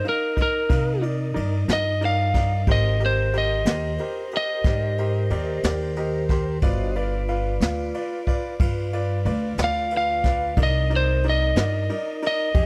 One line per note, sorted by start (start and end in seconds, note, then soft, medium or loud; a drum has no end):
0.00 2.64 D#4 medium
0.00 2.64 A#4 medium
0.00 2.64 D#5 medium
0.04 0.29 D#4 soft
0.04 0.29 A#4 soft
0.04 0.29 F5 medium
0.04 ride medium
0.09 0.39 A#4 medium
0.37 0.62 D#4 medium
0.37 0.62 A#4 soft
0.37 0.62 D#5 medium
0.37 kick medium
0.37 ride medium
0.42 1.04 A#4 medium
0.69 1.32 C3 medium
0.69 0.94 D#4 medium
0.69 0.94 A#4 soft
0.69 0.94 F5 medium
0.69 kick loud
0.69 snare soft
0.69 ride medium
1.01 1.27 D#4 medium
1.01 1.27 A#4 soft
1.01 1.27 D5 medium
1.01 ride medium
1.34 1.66 G2 medium
1.34 1.60 D#4 medium
1.34 1.60 A#4 medium
1.34 1.60 D5 medium
1.34 ride medium
1.68 2.63 G2 medium
1.68 1.93 D#4 medium
1.68 1.93 A#4 medium
1.68 1.93 D#5 medium
1.68 snare loud
1.68 ride medium
1.73 2.03 D#5 medium
2.01 2.26 D#4 medium
2.01 2.26 A#4 medium
2.01 2.26 D5 medium
2.01 ride medium
2.05 2.68 F5 medium
2.34 2.59 D#4 medium
2.34 2.59 A#4 soft
2.34 2.59 D5 medium
2.34 kick medium
2.34 snare soft
2.34 ride medium
2.67 3.62 G#1 loud
2.67 2.92 G4 medium
2.67 6.59 G4 medium
2.67 6.59 A#4 medium
2.67 2.93 A#4 medium
2.67 6.59 C5 medium
2.67 2.93 C5 medium
2.67 kick loud
2.67 ride medium
2.72 3.02 D#5 medium
3.00 3.25 G4 medium
3.00 3.25 A#4 soft
3.00 3.25 D#5 medium
3.00 ride medium
3.06 3.35 C5 medium
3.33 3.58 G4 medium
3.33 3.58 A#4 soft
3.33 3.58 C5 medium
3.33 ride medium
3.38 4.32 D#5 medium
3.65 3.96 D#2 loud
3.65 3.91 G4 medium
3.65 3.91 A#4 medium
3.65 3.91 C5 medium
3.65 snare loud
3.65 ride medium
3.98 4.24 G4 soft
3.98 4.24 A#4 soft
3.98 4.24 C5 medium
3.98 ride medium
4.31 4.57 G4 medium
4.31 4.58 A#4 soft
4.31 4.57 D#5 medium
4.31 ride medium
4.37 5.62 D#5 loud
4.64 5.27 G#2 medium
4.64 4.91 G4 medium
4.64 4.91 A#4 soft
4.64 4.91 D5 medium
4.64 kick loud
4.64 snare soft
4.64 ride medium
4.98 5.23 G4 medium
4.98 5.23 A#4 soft
4.98 5.23 C5 medium
4.98 ride medium
5.30 5.61 D#2 medium
5.30 5.55 G4 medium
5.30 5.56 A#4 medium
5.30 5.56 D5 medium
5.30 ride medium
5.63 6.59 D#2 medium
5.63 5.89 G4 medium
5.63 5.89 A#4 medium
5.63 5.89 D5 medium
5.63 snare loud
5.63 ride medium
5.96 6.22 G4 medium
5.96 6.22 A#4 medium
5.96 6.22 D#5 medium
5.96 ride medium
6.29 6.55 G4 medium
6.29 6.55 A#4 medium
6.29 6.55 C5 medium
6.29 kick medium
6.29 snare soft
6.29 ride medium
6.62 7.57 G1 loud
6.62 6.88 F4 medium
6.62 6.95 F#4 medium
6.62 6.88 B4 medium
6.62 6.96 C5 medium
6.62 6.88 D5 medium
6.62 6.95 D#5 medium
6.62 kick loud
6.62 ride medium
6.95 7.21 F4 medium
6.95 10.54 F4 medium
6.95 10.54 B4 medium
6.95 7.20 B4 medium
6.95 7.21 D5 medium
6.95 10.54 D5 medium
6.95 ride medium
7.28 7.53 F4 medium
7.28 7.53 B4 medium
7.28 7.54 F5 medium
7.28 ride medium
7.61 7.91 D2 loud
7.61 7.87 F4 medium
7.61 7.87 B4 medium
7.61 7.87 F5 medium
7.61 snare loud
7.61 ride medium
7.94 8.19 F4 medium
7.94 8.19 B4 medium
7.94 8.19 D5 medium
7.94 ride medium
8.27 8.52 F4 medium
8.27 8.52 B4 medium
8.27 8.52 D5 medium
8.27 kick medium
8.27 ride medium
8.60 9.22 G2 medium
8.60 8.85 F4 medium
8.60 8.85 B4 medium
8.60 8.85 F5 medium
8.60 kick loud
8.60 ride medium
8.93 9.18 F4 medium
8.93 9.18 B4 medium
8.93 9.18 D5 medium
8.93 ride medium
9.25 9.56 D2 loud
9.25 9.51 F4 medium
9.25 9.51 B4 medium
9.25 9.51 D5 medium
9.25 ride medium
9.58 10.53 D2 medium
9.58 9.84 F4 medium
9.58 9.84 B4 medium
9.58 9.84 D5 medium
9.58 snare loud
9.58 ride medium
9.64 9.94 F5 medium
9.91 10.17 F4 medium
9.91 10.17 B4 medium
9.91 10.16 F5 medium
9.91 ride medium
9.97 10.59 F5 medium
10.23 10.50 F4 medium
10.23 10.50 B4 medium
10.23 10.50 D5 medium
10.23 kick medium
10.23 snare soft
10.23 ride medium
10.57 11.52 C2 loud
10.57 10.82 D#4 medium
10.57 12.53 D#4 medium
10.57 12.53 A#4 medium
10.57 10.82 A#4 medium
10.57 10.82 D5 medium
10.57 12.53 D#5 medium
10.57 kick loud
10.57 ride medium
10.63 10.92 D#5 medium
10.90 11.15 D#4 medium
10.90 11.15 A#4 medium
10.90 11.15 D5 medium
10.90 ride medium
10.96 11.25 C5 medium
11.23 11.49 D#4 medium
11.23 11.49 A#4 medium
11.23 11.49 D5 medium
11.23 ride medium
11.29 12.22 D#5 medium
11.56 11.86 G2 loud
11.56 11.82 D#4 medium
11.56 11.81 A#4 medium
11.56 11.82 D5 medium
11.56 snare loud
11.56 ride medium
11.89 12.14 D#4 medium
11.89 12.14 A#4 medium
11.89 12.14 D5 medium
11.89 ride medium
12.22 12.47 D#4 medium
12.22 12.47 A#4 medium
12.22 12.47 D5 medium
12.22 ride medium
12.27 12.66 D#5 medium
12.54 12.66 F2 medium
12.54 12.66 G4 medium
12.54 12.66 G#4 medium
12.54 12.66 D#5 medium
12.54 kick loud
12.54 ride medium